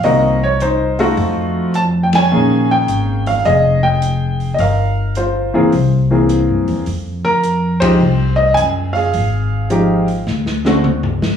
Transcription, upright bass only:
X:1
M:4/4
L:1/8
Q:"Swing" 1/4=106
K:Fm
V:1 name="Upright bass" clef=bass
C,,4 F,,4 | B,,,2 A,,,2 F,,,4 | G,,,3 D,, C,,2- (3C,, G,, =E,, | F,,4 C,,2 _G,,2 |
A,,,4 =D,,3 A,,, |]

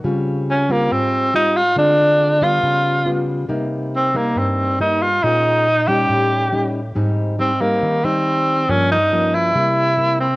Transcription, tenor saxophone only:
X:1
M:4/4
L:1/8
Q:1/4=139
K:Dblyd
V:1 name="Tenor saxophone"
z2 D B, C2 E F | =D3 F4 z | z2 C B, C2 E F | E3 G4 z |
z2 C B,2 C3 | D E2 _F4 C |]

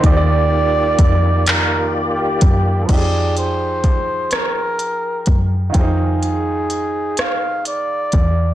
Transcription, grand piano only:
X:1
M:6/8
L:1/8
Q:3/8=42
K:Fdor
V:1 name="Grand piano"
[E,EGcd]6 | [F,EGA]6 | [E,EFAcg]6 |]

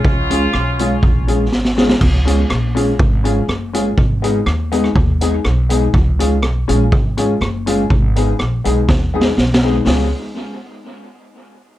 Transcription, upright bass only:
X:1
M:4/4
L:1/8
Q:1/4=122
K:Dbmix
V:1 name="Upright bass" clef=bass
D,,2 C,,2 B,,,2 A,,,2 | D,,2 B,,,2 A,,,2 G,,,2 | A,,,2 E,,2 E,,2 C,,2 | D,,2 C,, B,,, A,,,2 G,,,2 |
A,,,2 B,,, C,, E,,2 C,,2 | D,, z6 z |]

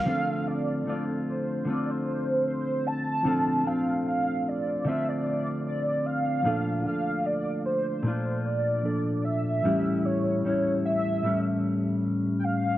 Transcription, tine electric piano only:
X:1
M:4/4
L:1/8
Q:"Swing 16ths" 1/4=75
K:Dm
V:1 name="Tine electric piano"
[F,CDA]8 | [F,CDA]8 | [F,B,DA]6 [F,B,DA]2 | [E,A,^CG]8 |]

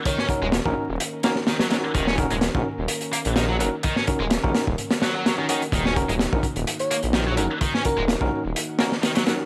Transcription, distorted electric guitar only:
X:1
M:4/4
L:1/16
Q:1/4=127
K:Ebm
V:1 name="Distorted electric guitar" clef=bass
E, D z A, z6 B, z E, G, G, z | E, D z A, z6 B, z E, G, G, z | E, D z A, z6 G, G, G, E, E, z | E, D z A, z6 B, z E, G, G, z |
E, D z A, z6 B, z E, G, G, z |]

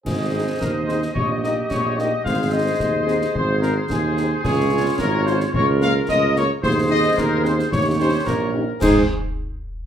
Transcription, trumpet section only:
X:1
M:2/4
L:1/8
Q:1/4=110
K:Ab
V:1 name="Trumpet section"
A2 B c | d e d e | f e3 | c B A2 |
A2 B c | d f e d | c e B c | d c B2 |
A z3 |]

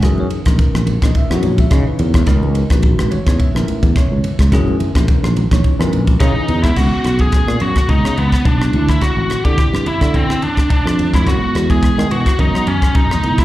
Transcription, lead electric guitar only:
X:1
M:4/4
L:1/16
Q:"Swing 16ths" 1/4=107
K:C#dor
V:1 name="Lead electric guitar"
z16 | z16 | z12 D3 E | F3 G3 F2 D2 B,2 =D3 E |
F3 =G3 E2 =C2 =D2 D3 E | F3 G3 F2 D2 C2 D3 E |]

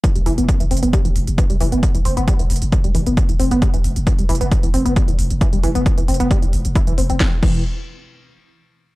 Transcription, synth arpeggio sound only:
X:1
M:4/4
L:1/16
Q:1/4=134
K:Em
V:1 name="Synth arpeggio sound" clef=bass
E, G, E, B, z E, C B, G, E, z2 E, G, E, B, | z E, C B, G, E, z2 E, G, E, B, z E, C B, | G, E, z2 E, G, E, B, z E, C B, G, E, z2 | E, G, E, B, z E, C B, G, E, z2 E E, C C |
E, z E,2 z12 |]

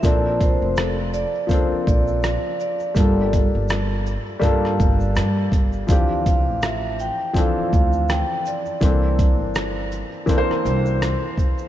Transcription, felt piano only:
X:1
M:4/4
L:1/8
Q:"Swing 16ths" 1/4=82
K:Dm
V:1 name="Felt piano"
[F,B,CDA]3 z [F,B,CDA]3 z | [G,B,DFA]3 z [G,B,DFA]3 z | [E,F,CDG]3 z [E,F,CDA]3 z | [E,B,CDA]3 z [E,B,CDBc]3 z |]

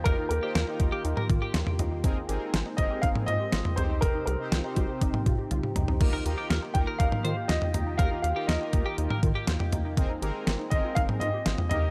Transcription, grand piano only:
X:1
M:4/4
L:1/8
Q:1/4=121
K:Eb
V:1 name="Grand piano"
B B4 z3 | z3 e f e2 c | B B4 z3 | z3 g f2 e2 |
f f e4- e z | z3 e f e2 e |]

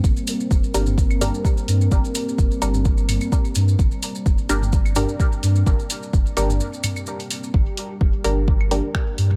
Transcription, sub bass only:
X:1
M:4/4
L:1/8
Q:"Swing 16ths" 1/4=128
K:Gm
V:1 name="Sub bass" clef=bass
G,,, z F,,, G,,,2 z2 G,, | G,,, z F,,, G,,,2 z2 G,, | G,,, z F,,, G,,,2 z2 G,, | G,,, z F,,, G,,, z4 |
G,,, z F,,, G,,,2 z2 G,, |]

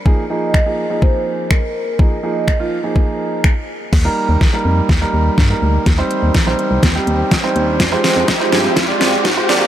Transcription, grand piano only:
X:1
M:4/4
L:1/16
Q:1/4=124
K:Eb
V:1 name="Grand piano"
[F,B,EA] z [F,B,EA]2 z [F,B,EA] z [F,B,EA]4- [F,B,EA] z4 | [F,B,EA] z [F,B,EA]2 z [F,B,EF] z [F,B,EA]4- [F,B,EA] z4 | z [G,B,EB]3 z [G,B,EB]3 z [G,B,EB]3 z [G,B,EB]3 | z [G,CEc]3 z [G,CEc]3 z [G,CEG]3 z [G,CEc]3 |
z [A,FGc]3 z [A,FGc]3 z [A,FGd]3 z [A,FGc] [B,FAd]2 |]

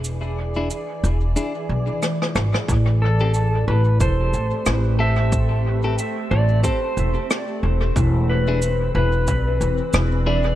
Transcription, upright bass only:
X:1
M:4/4
L:1/8
Q:"Swing 16ths" 1/4=91
K:Am
V:1 name="Upright bass" clef=bass
E,,,2 z E,,, z B,,, z ^G,,, | A,,,3 A,,, E,,, A,,, A,,,2- | A,,,2 z A,,, z E,,, z E,,, | E,,,3 E,,, B,,, E,,, E,,,2 |]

